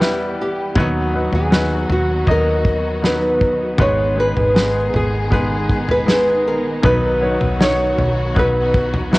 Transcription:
Already playing: E2 E3 G3 B3 E4 G4 B4
0.00 G3 B3 E4 B4, snare
0.38 C#2 G4
0.76 D#2 D#3 F#3 B3 D#4 F#4 B4, kick, floor tom
0.80 F#4
1.14 F#3 B3 D#4 B4
1.32 D#2 G#4, floor tom
1.51 F#3 B3 D#4 B4, snare
1.89 D#2 F#4, floor tom
2.27 D#2 F#3 B3 D#4 D#5, kick, floor tom
2.31 A#4
2.65 kick
3.02 F#3 B3 D#4 B4, snare
3.41 kick
3.78 G#1 G#2 G#3 B3 D#4 G#4 B4 C#5, kick, floor tom
4.16 G#3 B3 D#4 G#4
4.20 B4
4.36 G#1, floor tom
4.54 G#3 B3 D#4 B4, snare
4.93 G#1 G#4, floor tom
5.30 G#3 B3 D#4 G#4 B4, kick, floor tom
5.69 kick
5.89 B4, floor tom
6.06 G#3 B3 D#4 G#4, snare
6.46 A#1 A#4
6.83 B1 B2 F#3 B3 D#4 F#4 B4, kick, floor tom
7.21 F#3 B3 D#4 C#5
7.41 B1, floor tom
7.59 F#3 B3 D#4 C#5, snare
7.64 C#5
7.98 B1, floor tom
8.35 B1 F#3 B3 D#4 B4, kick, floor tom
8.39 B4
8.74 kick
8.94 floor tom
9.12 F#3 B3 D#4 F#4 B4, snare

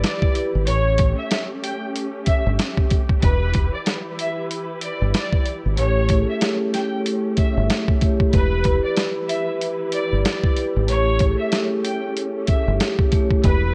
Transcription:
Already playing: E3 E4 G4 B4
0.03 D5, snare, closed hi-hat
0.22 kick
0.35 E4 G4 B4, closed hi-hat
0.55 G#1
0.67 A1 A3 C#4 C#5, closed hi-hat
0.98 kick, closed hi-hat
1.17 E5
1.31 snare, closed hi-hat
1.63 G5, closed hi-hat
1.96 closed hi-hat
2.26 E5, kick, closed hi-hat
2.47 G1
2.59 snare, closed hi-hat
2.78 kick
2.90 kick, closed hi-hat
3.09 kick
3.22 E1 E3 E4 B4, kick, closed hi-hat
3.53 kick, closed hi-hat
3.73 D5
3.86 snare, closed hi-hat
4.19 E5, closed hi-hat
4.51 closed hi-hat
4.81 D5, closed hi-hat
5.02 G1
5.14 D5, snare, closed hi-hat
5.33 kick
5.46 closed hi-hat
5.66 G#1
5.76 A1 A3 C#4 E4 G4 C#5, closed hi-hat
6.09 A3 E4 G4, kick, closed hi-hat
6.13 G#4
6.19 A4
6.29 E5
6.41 snare, closed hi-hat
6.74 G5, snare, closed hi-hat
7.06 closed hi-hat
7.37 E5, kick, closed hi-hat
7.57 G1
7.70 snare, closed hi-hat
7.88 kick
8.01 A3 E4 G4 C#5, kick, closed hi-hat
8.20 kick
8.31 E1 E3 E4 G4 B4, kick, closed hi-hat
8.64 E4 G4, kick, closed hi-hat
8.68 B4
8.84 D5
8.97 snare, closed hi-hat
9.28 E5, closed hi-hat
9.61 closed hi-hat
9.92 D5, closed hi-hat
10.12 G1
10.24 D5, snare, closed hi-hat
10.43 kick
10.56 E4 G4 B4, closed hi-hat
10.76 G#1
10.87 A1 A3 C#4 E4 G4 C#5, closed hi-hat
11.19 A3 E4 G4, kick, closed hi-hat
11.24 G#4
11.30 A4
11.39 E5
11.52 snare, closed hi-hat
11.84 G5, closed hi-hat
12.17 closed hi-hat
12.47 E5, kick, closed hi-hat
12.68 G1
12.80 snare, closed hi-hat
12.99 kick
13.11 A3 E4 G4 C#5, kick, closed hi-hat
13.31 kick
13.42 E1 E3 E4 G4 B4, kick, closed hi-hat

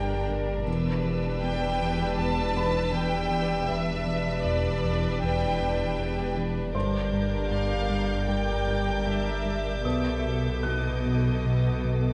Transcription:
Already playing: G1 G2 D4 G4 A#4 D5 G5
0.29 G2
0.66 E1 E2 D4 G4 B4 D5 E6
1.05 E2
1.42 E2 G5 B6
1.81 E2
2.18 E2 A5
2.55 E2 B4 B5
2.93 E2 G5
3.31 E2
3.69 E1 E2 D4 G4 B4 D5 E5
4.06 E2
4.45 E2 D5
4.84 E2
5.23 E2 G5
5.61 E2
5.99 E2
6.37 E2
6.74 G1 G2 D4 A#4 C5 C6 D6 G6
7.12 G2
7.50 G2 F5
7.90 G2
8.28 G2 D4 A#4 G5
8.68 G2
9.06 G2 E5
9.45 G2
9.83 B1 B2 B3 F#4 A4 B4 E5 D#6
10.25 B2
10.63 B2 B3 A4 D#5 F#6
11.06 B2
11.45 B2
11.85 B2

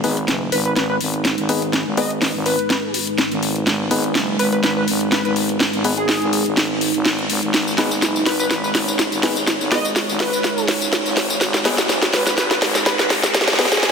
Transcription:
Already playing: G#3 D#4 B4
0.04 G#1 B3 D#4 G#4 B4, open hi-hat
0.17 closed hi-hat
0.28 F#1, snare, closed hi-hat
0.52 G#1 B4, open hi-hat
0.65 B4, closed hi-hat
0.76 G#1 B4, snare, closed hi-hat
0.89 B4
1.01 G#1, open hi-hat
1.14 closed hi-hat
1.25 snare, closed hi-hat
1.38 G#1, closed hi-hat
1.49 B3 D#4 G#4 B4, open hi-hat
1.62 closed hi-hat
1.73 snare, closed hi-hat
1.86 G#1
1.97 B3 D#4 G#4 B4 D#5, open hi-hat
2.11 closed hi-hat
2.22 snare, open hi-hat
2.35 G#1
2.46 B4, open hi-hat
2.59 closed hi-hat
2.70 snare, closed hi-hat
2.94 open hi-hat
3.07 closed hi-hat
3.18 snare, closed hi-hat
3.31 G#1, closed hi-hat
3.43 open hi-hat
3.56 closed hi-hat
3.67 G#1, snare, closed hi-hat
3.91 G#1 B3 D#4 G#4 B4, open hi-hat
4.04 closed hi-hat
4.15 F#1, snare, closed hi-hat
4.39 G#1 B4, open hi-hat
4.52 B4, closed hi-hat
4.63 G#1 B4, snare, closed hi-hat
4.77 B4
4.88 G#1, open hi-hat
5.01 closed hi-hat
5.12 B4, snare, closed hi-hat
5.25 G#1 B4, closed hi-hat
5.36 open hi-hat
5.49 closed hi-hat
5.60 snare, closed hi-hat
5.73 G#1, closed hi-hat
5.84 B3 D#4 G#4 B4, open hi-hat
5.98 G#4, closed hi-hat
6.09 snare, open hi-hat
6.22 G#1, closed hi-hat
6.33 open hi-hat
6.46 G#1, closed hi-hat
6.57 snare, closed hi-hat
6.81 open hi-hat
6.94 G#1, closed hi-hat
7.05 G#1, snare, closed hi-hat
7.19 closed hi-hat
7.30 G#1, open hi-hat
7.43 G#1, closed hi-hat
7.54 G#1 C#5, snare, closed hi-hat, tambourine, riser
7.67 tambourine
7.78 G#1 B3 D#4 G#4 B4, snare, open hi-hat
7.91 closed hi-hat, tambourine
8.02 F#1, snare, closed hi-hat, tambourine
8.16 tambourine
8.26 G#1 B4, snare, open hi-hat
8.39 B4, closed hi-hat, tambourine
8.50 G#1 B4, snare, closed hi-hat, tambourine
8.64 B4, tambourine
8.75 G#1, snare, open hi-hat
8.88 closed hi-hat, tambourine
8.99 snare, closed hi-hat, tambourine
9.12 G#1, closed hi-hat, tambourine
9.23 B3 D#4 G#4 B4, snare, open hi-hat
9.36 closed hi-hat, tambourine
9.47 snare, closed hi-hat, tambourine
9.60 G#1, tambourine
9.71 B3 D#4 G#4 B4 D#5, snare, open hi-hat
9.85 closed hi-hat, tambourine
9.96 snare, open hi-hat, tambourine
10.09 G#1, tambourine
10.20 B4, snare, open hi-hat
10.33 closed hi-hat, tambourine
10.44 snare, closed hi-hat, tambourine
10.58 tambourine
10.68 snare, open hi-hat
10.81 closed hi-hat, tambourine
10.93 snare, closed hi-hat, tambourine
11.06 G#1, closed hi-hat, tambourine
11.17 snare, open hi-hat
11.30 closed hi-hat, tambourine
11.41 G#1, snare, closed hi-hat, tambourine
11.54 snare, tambourine
11.65 G#1 B3 D#4 G#4 B4, snare, open hi-hat
11.78 snare, tambourine
11.89 F#1, snare, closed hi-hat, tambourine
12.02 snare, tambourine
12.13 G#1 B4, snare, open hi-hat
12.27 B4, snare, tambourine
12.38 G#1 B4, snare, closed hi-hat, tambourine
12.51 B4, snare, tambourine
12.62 G#1, snare, open hi-hat
12.75 snare, closed hi-hat, tambourine
12.86 B4, snare, closed hi-hat, tambourine
12.99 G#1 B4, snare, closed hi-hat, tambourine
13.10 snare, open hi-hat
13.23 snare, tambourine
13.34 snare, closed hi-hat, tambourine
13.41 snare
13.48 G#1, snare, closed hi-hat, tambourine
13.53 snare
13.59 B3 D#4 G#4 B4, snare, open hi-hat
13.65 snare
13.72 G#4, snare, closed hi-hat, tambourine
13.77 snare
13.83 snare, open hi-hat, tambourine

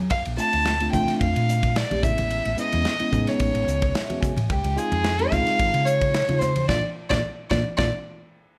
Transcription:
0.10 A#1 F5, kick, ride
0.25 A#1, ride
0.37 A3 C4 D4 F4 A5, hi-hat pedal
0.53 D2, ride
0.65 snare, ride
0.80 A3 C4 D4 F4, ride
0.92 A#1 A3 C4 D4 F4 G5, kick, hi-hat pedal, high conga, low conga
1.08 muted fingered electric bass stroke, snare, ride
1.21 F2 F5, kick, ride
1.36 A#2, ride
1.49 hi-hat pedal
1.63 kick, ride
1.76 D5, snare, ride
1.91 A#1 A3 C4 D4 G4, ride, high conga
2.02 A1 G#3 B3 C#4 E4 E5, kick, hi-hat pedal, low conga
2.18 ride, high conga
2.31 ride
2.45 A1, ride
2.57 G#3 B3 C#4 E4 D#5, hi-hat pedal
2.72 E2, ride, high conga
2.85 snare, ride
2.99 G#3 B3 C#4 E4, muted fingered electric bass stroke, ride
3.12 A2 G#3 B3 C#4 D#4, kick, hi-hat pedal, high conga, low conga
3.27 C#5, snare, ride
3.40 A1, kick, ride
3.55 A1, ride
3.67 C#2, hi-hat pedal
3.82 kick, ride
3.95 E5, snare, ride
4.09 G#3 B3 C#4 F#4, ride, high conga
4.21 G#5, kick, hi-hat pedal, low conga
4.36 A2 C#4 E4, ride, high conga
4.50 C#2 G4, kick, ride
4.64 C#2, ride
4.76 G#3 C4 D#4 F4 G#4, hi-hat pedal
4.92 F2, ride, high conga
5.04 snare, ride
5.19 G#3 C4 D#4 G4, ride
5.31 C#2 G#3 C4 D#4 F4 F5, kick, snare, hi-hat pedal, high conga, low conga
5.47 snare, ride
5.59 G#1, kick, ride
5.74 C#3, ride
5.85 C#5, hi-hat pedal
6.01 kick, ride
6.14 snare, ride
6.28 C#3 G#3 C4 D#4 F4, ride, high conga
6.38 C5, snare, hi-hat pedal, low conga
6.56 D#4 G4, ride, high conga
6.68 A#1 A#3 D4 F4 D5, kick, snare, high conga
7.09 A#1 A#3 D4 F4 D5, kick, snare, high conga
7.50 A#1 A#3 D4 F4 D5, kick, snare, high conga
7.77 A#1 A#3 D4 F4 D5, kick, snare, high conga

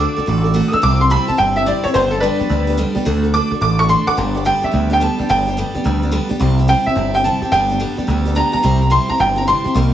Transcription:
Already playing: D6
0.00 D3 A3 D4 F#4 A4
0.16 D4 F#4 A4, muted picked electric bass stroke
0.26 A1 A3 D4 F#4 A4
0.44 D4 F#4 A4
0.54 D3 A3 D4 F#4 A4
0.68 A4 D#6
0.73 D4 F#4 E6, muted picked electric bass stroke
0.82 C2 C3 G3 C4 E4 G4 D6
1.00 C4 E4 G4 C6
1.10 C3 G3 C4 E4 G4 B5
1.28 C4 E4 G4 A5, muted picked electric bass stroke
1.37 G1 G3 C4 E4 G4 G5
1.56 C4 E4 G4 E5
1.66 C3 G3 C4 E4 G4 D5
1.84 C4 E4 G4 C#5, muted picked electric bass stroke
1.94 G1 G2 D3 G3 B3 D4 G4 C5
2.10 B3 D4 G4 A4
2.15 G3
2.20 G2 D3 G3 B3 D4 G4 B4
2.39 G3 B3 D4 G4, muted picked electric bass stroke
2.49 D2 G3 B3 D4 G4
2.67 G3 B3 D4 G4
2.77 G2 D3 G3 B3 D4 G4
2.95 G3 B3 D4 G4, muted picked electric bass stroke
3.05 D2 D3 A3 D4 F#4 A4
3.23 D4 F#4 A4
3.34 D3 A3 D4 F#4 A4 D6
3.52 D4 F#4 A4, muted picked electric bass stroke
3.61 A1 A3 D4 F#4 A4 D6
3.79 D4 F#4 A4 C#6
3.89 D3 A3 D4 F#4 A4 C6
4.07 D4 F#4 A4 F#5 D6, muted picked electric bass stroke
4.17 G1 G2 D3 G3 B3 D4 G4
4.34 G3 B3 D4 G4
4.45 G2 D3 G3 B3 D4 G4 G5
4.62 G3 B3 D4 G4 E5, muted picked electric bass stroke
4.71 D2 G3 B3 D4 G4
4.90 G3 B3 D4 G4 G5
5.00 G2 D3 G3 B3 D4 G4 A5
5.18 G3 B3 D4 G4, muted picked electric bass stroke
5.29 G1 G2 D3 G3 B3 D4 G4 G5
5.47 G3 B3 D4 G4
5.57 G2 D3 G3 B3 D4 G4
5.74 G3 B3 D4 G4, muted picked electric bass stroke
5.84 D2 G3 B3 D4 G4
6.02 G3 B3 D4 G4
6.11 G2 D3 G3 B3 D4 G4
6.29 G3 B3 D4 G4, muted picked electric bass stroke
6.39 C2 C3 G3 C4 E4 G4
6.58 C4 E4 G4
6.68 C3 G3 C4 E4 G4 G5
6.86 C4 E4 G4 E5, muted picked electric bass stroke
6.95 G1 G3 C4 E4 G4
7.14 C4 E4 G4 G5
7.24 C3 G3 C4 E4 G4 A5
7.42 C4 E4 G4, muted picked electric bass stroke
7.52 G1 G2 D3 G3 B3 D4 G4 G5
7.69 G3 B3 D4 G4
7.79 G2 D3 G3 B3 D4 G4
7.97 G3 B3 D4 G4, muted picked electric bass stroke
8.07 D2 G3 B3 D4 G4
8.25 G3 B3 D4 G4
8.35 G2 D3 G3 B3 D4 G4 A#5
8.52 G3 B3 D4 G4 A#5, muted picked electric bass stroke
8.63 C2 C3 G3 C4 E4 G4
8.80 C4 E4 G4
8.90 C3 G3 C4 E4 G4 C6
9.08 C4 E4 G4 A#5, muted picked electric bass stroke
9.18 G1 G3 C4 E4 G4 G5
9.36 C4 E4 G4 A#5
9.47 C3 G3 C4 E4 G4 C6
9.64 C4 E4 G4, muted picked electric bass stroke
9.74 C2 C3 G3 A#3 D#4 G4

